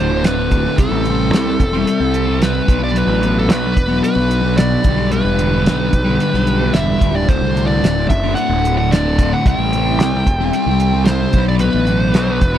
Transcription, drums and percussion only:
0.24 snare, closed hi-hat
0.51 kick, closed hi-hat
0.78 kick, closed hi-hat
1.05 closed hi-hat
1.33 snare, closed hi-hat
1.60 kick, closed hi-hat
1.87 closed hi-hat
2.14 closed hi-hat
2.42 snare, closed hi-hat
2.68 kick, closed hi-hat
2.96 closed hi-hat
3.23 closed hi-hat
3.50 snare, closed hi-hat
3.77 kick, closed hi-hat
4.04 closed hi-hat
4.31 closed hi-hat
4.58 snare, closed hi-hat
4.84 kick, closed hi-hat
5.12 closed hi-hat
5.39 closed hi-hat
5.66 snare, closed hi-hat
5.93 kick, closed hi-hat
6.20 closed hi-hat
6.34 snare
6.47 closed hi-hat
6.74 snare, closed hi-hat
7.01 kick, closed hi-hat
7.29 kick, closed hi-hat
7.57 closed hi-hat
7.84 snare, closed hi-hat
8.10 kick, closed hi-hat
8.37 closed hi-hat
8.65 closed hi-hat
8.92 snare, closed hi-hat
9.19 kick, closed hi-hat
9.46 kick, closed hi-hat
9.73 closed hi-hat
10.00 snare, closed hi-hat
10.27 kick, closed hi-hat
10.53 closed hi-hat
10.80 closed hi-hat
11.06 snare, closed hi-hat
11.33 kick, closed hi-hat
11.59 closed hi-hat
11.87 closed hi-hat
12.14 snare, closed hi-hat
12.41 kick, closed hi-hat

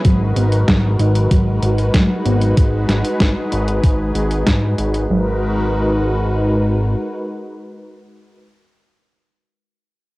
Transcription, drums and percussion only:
0.05 kick, closed hi-hat
0.36 closed hi-hat
0.52 closed hi-hat
0.68 kick, snare, closed hi-hat
0.99 closed hi-hat
1.15 closed hi-hat
1.31 kick, closed hi-hat
1.63 closed hi-hat
1.78 closed hi-hat
1.94 kick, snare, closed hi-hat
2.26 closed hi-hat
2.42 closed hi-hat
2.57 kick, closed hi-hat
2.89 snare, closed hi-hat
3.05 closed hi-hat
3.20 kick, snare, closed hi-hat
3.52 closed hi-hat
3.68 closed hi-hat
3.84 kick, closed hi-hat
4.15 closed hi-hat
4.31 closed hi-hat
4.47 kick, snare, closed hi-hat
4.78 closed hi-hat
4.94 closed hi-hat

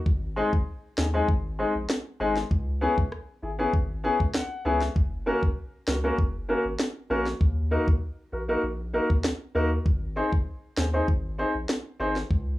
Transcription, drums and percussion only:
0.06 kick
0.53 kick
0.98 snare
1.29 kick
1.90 snare
2.37 snare
2.51 kick
2.98 kick
3.12 cross-stick
3.73 kick
4.20 kick
4.34 snare
4.81 snare
4.96 kick
5.43 kick
5.88 snare
6.18 kick
6.79 snare
7.26 snare
7.41 kick
7.88 kick
9.10 kick
9.24 snare
9.86 kick
10.33 kick
10.77 snare
11.08 kick
11.69 snare
12.16 snare
12.31 kick

